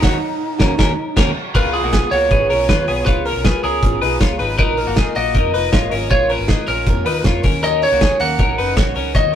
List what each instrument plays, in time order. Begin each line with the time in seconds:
Already playing: lead electric guitar D#4
0.02 fingered electric bass D#2, steel-string acoustic guitar D#3 A#3 C#4 F#4, clean electric guitar F#4 C#5, kick, snare, crash
0.58 fingered electric bass D#2, steel-string acoustic guitar A#3 C#4 F#4, clean electric guitar C#4 A#4, kick, snare
0.77 fingered electric bass D#2, steel-string acoustic guitar D#3 A#3 C#4 F#4, clean electric guitar C#4 A#4, kick, snare
1.16 fingered electric bass D#2, steel-string acoustic guitar D#3 A#3 C#4 F#4, clean electric guitar C#4 A#4, kick, snare, crash
1.54 fingered electric bass C#2, steel-string acoustic guitar C#3 G#3 B3 F4 G#4, clean electric guitar F4 B4, lead electric guitar A#4, kick, crash
1.73 steel-string acoustic guitar B3 F4 G#4, lead electric guitar G#4, open hi-hat
1.83 fingered electric bass B1, clean electric guitar A#3 F#4
1.91 steel-string acoustic guitar G#3 B3 F4 G#4, clean electric guitar B3 G#4, kick, snare, closed hi-hat
2.10 fingered electric bass C#2, clean electric guitar A#3 F#4, steel-string acoustic guitar B3 F4 G#4, lead electric guitar C#5, open hi-hat
2.29 fingered electric bass G#1, steel-string acoustic guitar C#3 G#3 B3 F4 G#4, clean electric guitar B3 G#4, kick, closed hi-hat
2.49 fingered electric bass B1, steel-string acoustic guitar B3 F4 G#4, clean electric guitar C#4 A#4, open hi-hat
2.68 fingered electric bass D#2, steel-string acoustic guitar G#3 B3 F4 G#4, clean electric guitar F4 B4, kick, snare, closed hi-hat
2.86 fingered electric bass B1, clean electric guitar B3 G#4, steel-string acoustic guitar B3 F4 G#4, open hi-hat
3.06 fingered electric bass C#2, steel-string acoustic guitar C#3 G#3 B3 F4 G#4, clean electric guitar F4 C#5, lead electric guitar B4, kick, closed hi-hat
3.24 steel-string acoustic guitar B3 F4 G#4, clean electric guitar C#4 A#4, lead electric guitar A#4, open hi-hat
3.35 fingered electric bass B1
3.44 steel-string acoustic guitar G#3 B3 F4 G#4, clean electric guitar B3 G#4, kick, snare, closed hi-hat
3.63 fingered electric bass C#2, steel-string acoustic guitar B3 F4 G#4, clean electric guitar C#4 A#4, lead electric guitar G#4, open hi-hat
3.82 fingered electric bass G#1, steel-string acoustic guitar C#3 G#3 B3 F4 G#4, kick, closed hi-hat
4.01 fingered electric bass B1, steel-string acoustic guitar B3 F4 G#4, clean electric guitar D#4 B4, open hi-hat
4.20 fingered electric bass C#2, steel-string acoustic guitar G#3 B3 F4 G#4, clean electric guitar F4 C#5, kick, snare, closed hi-hat
4.39 fingered electric bass G#1, steel-string acoustic guitar B3 F4 G#4, clean electric guitar D#4 B4, open hi-hat
4.58 fingered electric bass A#1, steel-string acoustic guitar A#2 D#3 A#3 F4 A#4, clean electric guitar D#4 A#4, lead electric guitar B4, kick, closed hi-hat
4.77 steel-string acoustic guitar A#3 F4 A#4, lead electric guitar A#4, open hi-hat
4.87 fingered electric bass G#1, clean electric guitar A#3 F#4
4.96 steel-string acoustic guitar D#3 A#3 F4 A#4, clean electric guitar D#4 G#4, kick, snare, closed hi-hat
5.15 fingered electric bass A#1, clean electric guitar A#3 F#4, steel-string acoustic guitar A#3 F4 A#4, lead electric guitar D#5, open hi-hat
5.34 fingered electric bass F2, steel-string acoustic guitar A#2 D#3 A#3 F4 A#4, clean electric guitar D#4 A#4, kick, closed hi-hat
5.53 fingered electric bass F1, steel-string acoustic guitar A#3 F4 A#4, clean electric guitar D#4 B4, open hi-hat
5.72 fingered electric bass G#1, steel-string acoustic guitar D#3 A#3 F4, clean electric guitar F4 C#5, kick, snare, closed hi-hat
5.91 fingered electric bass G#1, steel-string acoustic guitar A#3 F4 A#4, clean electric guitar C#4 A#4, open hi-hat
6.09 fingered electric bass A#1, steel-string acoustic guitar A#2 D#3 A#3 F4 A#4, clean electric guitar F4 C#5, lead electric guitar C#5, kick, closed hi-hat
6.29 steel-string acoustic guitar A#3 F4 A#4, clean electric guitar C#4 A#4, lead electric guitar B4, open hi-hat
6.39 fingered electric bass G#1
6.48 steel-string acoustic guitar D#3 A#3 F4 A#4, clean electric guitar D#4 G#4, kick, snare, closed hi-hat
6.67 fingered electric bass A#1, steel-string acoustic guitar A#3 F4 A#4, clean electric guitar C#4 A#4, lead electric guitar A#4, open hi-hat
6.86 fingered electric bass F2, steel-string acoustic guitar A#2 D#3 A#3 F4 A#4, kick, closed hi-hat
7.05 fingered electric bass D#2, steel-string acoustic guitar A#3 F4 A#4, clean electric guitar D#4 B4, open hi-hat
7.24 fingered electric bass F2, steel-string acoustic guitar D#3 A#3 F4 A#4, clean electric guitar F4 C#5, kick, snare, closed hi-hat
7.43 fingered electric bass D#2, clean electric guitar C#4 A#4, steel-string acoustic guitar C#4 D#4 A#4, kick, open hi-hat
7.63 steel-string acoustic guitar D#3 F#3 C#4 D#4 A#4, clean electric guitar C#4 A#4, lead electric guitar D#5, closed hi-hat
7.82 steel-string acoustic guitar C#4 D#4 A#4, lead electric guitar C#5, open hi-hat
7.92 fingered electric bass C#2, clean electric guitar A#3 F#4
8.00 steel-string acoustic guitar F#3 C#4 D#4 A#4, clean electric guitar C#4 G#4, kick, snare, closed hi-hat
8.20 fingered electric bass D#2, clean electric guitar A#3 F#4, steel-string acoustic guitar C#4 D#4 A#4, lead electric guitar F#5, open hi-hat
8.38 fingered electric bass A#1, steel-string acoustic guitar D#3 F#3 C#4 D#4 A#4, clean electric guitar C#4 A#4, kick, closed hi-hat
8.57 fingered electric bass F#1, steel-string acoustic guitar C#4 D#4 A#4, clean electric guitar D#4 B4, open hi-hat
8.76 fingered electric bass A#1, steel-string acoustic guitar F#3 C#4 D#4 A#4, clean electric guitar F#4 C#5, kick, snare, closed hi-hat
8.95 fingered electric bass C#2, clean electric guitar C#4 A#4, steel-string acoustic guitar C#4 D#4 A#4, open hi-hat
9.13 fingered electric bass D#2, steel-string acoustic guitar D#3 F#3 C#4 D#4 A#4, clean electric guitar F#4 C#5, lead electric guitar D#5, kick, closed hi-hat
9.32 steel-string acoustic guitar A#4